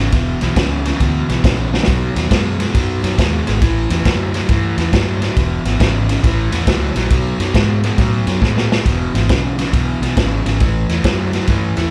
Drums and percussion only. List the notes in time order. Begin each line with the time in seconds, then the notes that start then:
0.12 kick, snare, ride
0.41 snare, ride
0.56 kick, snare, ride
0.85 snare, ride
1.00 kick, snare, ride
1.29 snare, ride
1.44 kick, snare, ride
1.74 snare
1.84 snare
1.88 kick, snare, ride
2.16 snare, ride
2.31 kick, snare, ride
2.60 snare, ride
2.75 kick, snare, ride
3.04 snare, ride
3.18 kick, snare, ride
3.47 snare, ride
3.62 kick, snare, ride
3.90 snare, ride
4.05 kick, snare, ride
4.34 snare, ride
4.49 kick, snare, ride
4.78 snare, ride
4.93 kick, snare, ride
5.22 snare, ride
5.37 kick, snare, ride
5.65 snare, ride
5.80 kick, snare, ride
6.09 snare, ride
6.24 kick, snare, ride
6.52 snare, ride
6.67 kick, snare, ride
6.96 snare, ride
7.10 kick, snare, ride
7.40 snare, ride
7.54 kick, snare, ride
7.84 snare, ride
7.98 kick, snare, ride
8.27 snare, ride
8.42 kick, snare
8.57 snare
8.72 snare
8.86 kick, snare, ride
9.15 snare, ride
9.29 kick, snare, ride
9.59 snare, ride
9.73 kick, snare, ride
10.03 snare, ride
10.17 kick, snare, ride
10.46 snare, ride
10.60 kick, snare, ride
10.89 snare, ride
11.04 kick, snare, ride
11.33 snare, ride
11.47 kick, snare, ride
11.77 snare, ride